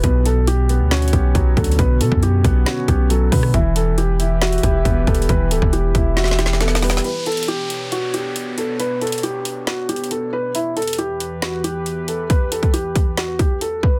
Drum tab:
HH |x-----------x-----------x-----------x-----------x--x--x--x--x-----------x-----------x---x---x---|x-----------x-----------x-----------x-----------x-----------x-----------x-----------o-----------|x-----------x-----------x-----------x-----------x--x--x--x--x-----------x-----------x---x---x---|x-----------x-----------x-----------x-----------x-----x-----x-----------x-----------o-----------|
SD |------------------------------------------------o-----------------------------------------------|------------------------------------------------o-----------------------------------------r-----|------------------------------------------------o-----------------------------------------------|------------------------------------------------o---o---o---o---o---o---o---o---o---o---o---o---|
BD |o-----------------------------------------------------------o-----------o-----------o-----------|o-----------------o-----------------o-----------------------o-----------------------o-----------|o-----------------------------------------------------------o-----------o-----------o-----------|o-----------------o-----------------o-----------------------------------------------------------|

HH |x-----------x--x--x--x--x-----------x-----------x-----------x-----------x-----------x-----------|x-----------x--x--x--x--x-----------x-----------x-----------x---x---x---x-----------------------|x-----------x--x--x--x--x-----------x-----------x-----------x-----------x-----------x-----------|x-----------x-----x-----x-----------x-----------x-----------x-----------x-----------------------|
SD |------------------------------------------------------------------------------------------------|------------------------------------------------o-----------------------------------------------|------------------------------------------------o-----------------------------------------------|------------------------------------------------o-----------------------------------------------|
BD |------------------------------------------------------------------------------------------------|------------------------------------------------------------------------------------------------|------------------------------------------------------------------------------------------------|o-----------------o-----------------o-----------------------o-----------------------o-----------|